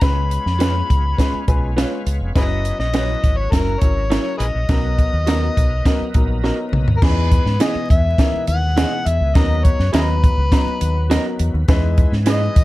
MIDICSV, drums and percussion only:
0, 0, Header, 1, 2, 480
1, 0, Start_track
1, 0, Key_signature, 5, "major"
1, 0, Tempo, 583658
1, 14, Time_signature, 4, 2, 24, 8
1, 10396, End_track
2, 0, Start_track
2, 0, Title_t, "Drums"
2, 11, Note_on_c, 9, 42, 78
2, 15, Note_on_c, 9, 36, 112
2, 16, Note_on_c, 9, 38, 102
2, 93, Note_off_c, 9, 42, 0
2, 97, Note_off_c, 9, 36, 0
2, 98, Note_off_c, 9, 38, 0
2, 256, Note_on_c, 9, 42, 54
2, 339, Note_off_c, 9, 42, 0
2, 382, Note_on_c, 9, 38, 35
2, 464, Note_off_c, 9, 38, 0
2, 495, Note_on_c, 9, 42, 99
2, 504, Note_on_c, 9, 38, 115
2, 577, Note_off_c, 9, 42, 0
2, 586, Note_off_c, 9, 38, 0
2, 741, Note_on_c, 9, 36, 78
2, 744, Note_on_c, 9, 42, 71
2, 824, Note_off_c, 9, 36, 0
2, 826, Note_off_c, 9, 42, 0
2, 975, Note_on_c, 9, 36, 76
2, 982, Note_on_c, 9, 42, 77
2, 985, Note_on_c, 9, 38, 90
2, 1057, Note_off_c, 9, 36, 0
2, 1064, Note_off_c, 9, 42, 0
2, 1067, Note_off_c, 9, 38, 0
2, 1217, Note_on_c, 9, 42, 64
2, 1218, Note_on_c, 9, 36, 86
2, 1299, Note_off_c, 9, 42, 0
2, 1300, Note_off_c, 9, 36, 0
2, 1463, Note_on_c, 9, 42, 90
2, 1465, Note_on_c, 9, 38, 114
2, 1545, Note_off_c, 9, 42, 0
2, 1547, Note_off_c, 9, 38, 0
2, 1698, Note_on_c, 9, 42, 73
2, 1781, Note_off_c, 9, 42, 0
2, 1937, Note_on_c, 9, 36, 112
2, 1937, Note_on_c, 9, 42, 78
2, 1942, Note_on_c, 9, 38, 95
2, 2019, Note_off_c, 9, 36, 0
2, 2019, Note_off_c, 9, 42, 0
2, 2024, Note_off_c, 9, 38, 0
2, 2180, Note_on_c, 9, 42, 54
2, 2262, Note_off_c, 9, 42, 0
2, 2300, Note_on_c, 9, 38, 34
2, 2383, Note_off_c, 9, 38, 0
2, 2415, Note_on_c, 9, 42, 88
2, 2424, Note_on_c, 9, 38, 118
2, 2497, Note_off_c, 9, 42, 0
2, 2506, Note_off_c, 9, 38, 0
2, 2662, Note_on_c, 9, 36, 77
2, 2662, Note_on_c, 9, 42, 74
2, 2744, Note_off_c, 9, 36, 0
2, 2745, Note_off_c, 9, 42, 0
2, 2896, Note_on_c, 9, 36, 74
2, 2902, Note_on_c, 9, 42, 78
2, 2905, Note_on_c, 9, 38, 93
2, 2978, Note_off_c, 9, 36, 0
2, 2984, Note_off_c, 9, 42, 0
2, 2987, Note_off_c, 9, 38, 0
2, 3137, Note_on_c, 9, 42, 73
2, 3139, Note_on_c, 9, 36, 86
2, 3220, Note_off_c, 9, 42, 0
2, 3222, Note_off_c, 9, 36, 0
2, 3385, Note_on_c, 9, 42, 85
2, 3386, Note_on_c, 9, 38, 117
2, 3467, Note_off_c, 9, 42, 0
2, 3468, Note_off_c, 9, 38, 0
2, 3620, Note_on_c, 9, 42, 72
2, 3702, Note_off_c, 9, 42, 0
2, 3856, Note_on_c, 9, 42, 75
2, 3858, Note_on_c, 9, 36, 109
2, 3861, Note_on_c, 9, 38, 101
2, 3938, Note_off_c, 9, 42, 0
2, 3940, Note_off_c, 9, 36, 0
2, 3943, Note_off_c, 9, 38, 0
2, 4100, Note_on_c, 9, 36, 74
2, 4101, Note_on_c, 9, 42, 53
2, 4183, Note_off_c, 9, 36, 0
2, 4183, Note_off_c, 9, 42, 0
2, 4336, Note_on_c, 9, 42, 98
2, 4344, Note_on_c, 9, 38, 107
2, 4418, Note_off_c, 9, 42, 0
2, 4427, Note_off_c, 9, 38, 0
2, 4582, Note_on_c, 9, 36, 77
2, 4584, Note_on_c, 9, 42, 76
2, 4664, Note_off_c, 9, 36, 0
2, 4666, Note_off_c, 9, 42, 0
2, 4814, Note_on_c, 9, 36, 83
2, 4817, Note_on_c, 9, 42, 73
2, 4819, Note_on_c, 9, 38, 99
2, 4897, Note_off_c, 9, 36, 0
2, 4899, Note_off_c, 9, 42, 0
2, 4902, Note_off_c, 9, 38, 0
2, 5052, Note_on_c, 9, 42, 72
2, 5056, Note_on_c, 9, 36, 88
2, 5134, Note_off_c, 9, 42, 0
2, 5138, Note_off_c, 9, 36, 0
2, 5297, Note_on_c, 9, 38, 54
2, 5380, Note_off_c, 9, 38, 0
2, 5535, Note_on_c, 9, 45, 83
2, 5617, Note_off_c, 9, 45, 0
2, 5656, Note_on_c, 9, 43, 80
2, 5738, Note_off_c, 9, 43, 0
2, 5774, Note_on_c, 9, 36, 109
2, 5774, Note_on_c, 9, 49, 89
2, 5779, Note_on_c, 9, 38, 101
2, 5856, Note_off_c, 9, 36, 0
2, 5857, Note_off_c, 9, 49, 0
2, 5862, Note_off_c, 9, 38, 0
2, 6016, Note_on_c, 9, 36, 77
2, 6016, Note_on_c, 9, 42, 58
2, 6098, Note_off_c, 9, 36, 0
2, 6098, Note_off_c, 9, 42, 0
2, 6135, Note_on_c, 9, 38, 35
2, 6217, Note_off_c, 9, 38, 0
2, 6251, Note_on_c, 9, 42, 94
2, 6259, Note_on_c, 9, 38, 116
2, 6333, Note_off_c, 9, 42, 0
2, 6342, Note_off_c, 9, 38, 0
2, 6498, Note_on_c, 9, 36, 86
2, 6502, Note_on_c, 9, 42, 76
2, 6580, Note_off_c, 9, 36, 0
2, 6584, Note_off_c, 9, 42, 0
2, 6730, Note_on_c, 9, 36, 77
2, 6734, Note_on_c, 9, 42, 79
2, 6737, Note_on_c, 9, 38, 90
2, 6813, Note_off_c, 9, 36, 0
2, 6817, Note_off_c, 9, 42, 0
2, 6819, Note_off_c, 9, 38, 0
2, 6969, Note_on_c, 9, 42, 70
2, 7052, Note_off_c, 9, 42, 0
2, 7217, Note_on_c, 9, 42, 93
2, 7218, Note_on_c, 9, 38, 113
2, 7299, Note_off_c, 9, 42, 0
2, 7300, Note_off_c, 9, 38, 0
2, 7454, Note_on_c, 9, 42, 72
2, 7537, Note_off_c, 9, 42, 0
2, 7691, Note_on_c, 9, 42, 75
2, 7692, Note_on_c, 9, 36, 118
2, 7696, Note_on_c, 9, 38, 99
2, 7774, Note_off_c, 9, 36, 0
2, 7774, Note_off_c, 9, 42, 0
2, 7778, Note_off_c, 9, 38, 0
2, 7934, Note_on_c, 9, 42, 58
2, 7935, Note_on_c, 9, 36, 74
2, 8017, Note_off_c, 9, 36, 0
2, 8017, Note_off_c, 9, 42, 0
2, 8055, Note_on_c, 9, 38, 36
2, 8137, Note_off_c, 9, 38, 0
2, 8171, Note_on_c, 9, 42, 101
2, 8180, Note_on_c, 9, 38, 115
2, 8254, Note_off_c, 9, 42, 0
2, 8262, Note_off_c, 9, 38, 0
2, 8419, Note_on_c, 9, 36, 81
2, 8422, Note_on_c, 9, 42, 75
2, 8501, Note_off_c, 9, 36, 0
2, 8504, Note_off_c, 9, 42, 0
2, 8650, Note_on_c, 9, 36, 87
2, 8653, Note_on_c, 9, 42, 77
2, 8655, Note_on_c, 9, 38, 93
2, 8732, Note_off_c, 9, 36, 0
2, 8735, Note_off_c, 9, 42, 0
2, 8738, Note_off_c, 9, 38, 0
2, 8890, Note_on_c, 9, 42, 77
2, 8972, Note_off_c, 9, 42, 0
2, 9136, Note_on_c, 9, 42, 87
2, 9138, Note_on_c, 9, 38, 113
2, 9219, Note_off_c, 9, 42, 0
2, 9220, Note_off_c, 9, 38, 0
2, 9370, Note_on_c, 9, 42, 75
2, 9452, Note_off_c, 9, 42, 0
2, 9610, Note_on_c, 9, 36, 115
2, 9610, Note_on_c, 9, 42, 83
2, 9614, Note_on_c, 9, 38, 103
2, 9692, Note_off_c, 9, 42, 0
2, 9693, Note_off_c, 9, 36, 0
2, 9697, Note_off_c, 9, 38, 0
2, 9850, Note_on_c, 9, 42, 53
2, 9851, Note_on_c, 9, 36, 75
2, 9932, Note_off_c, 9, 42, 0
2, 9934, Note_off_c, 9, 36, 0
2, 9973, Note_on_c, 9, 38, 38
2, 10055, Note_off_c, 9, 38, 0
2, 10082, Note_on_c, 9, 42, 95
2, 10090, Note_on_c, 9, 38, 109
2, 10164, Note_off_c, 9, 42, 0
2, 10173, Note_off_c, 9, 38, 0
2, 10331, Note_on_c, 9, 42, 79
2, 10332, Note_on_c, 9, 36, 88
2, 10396, Note_off_c, 9, 36, 0
2, 10396, Note_off_c, 9, 42, 0
2, 10396, End_track
0, 0, End_of_file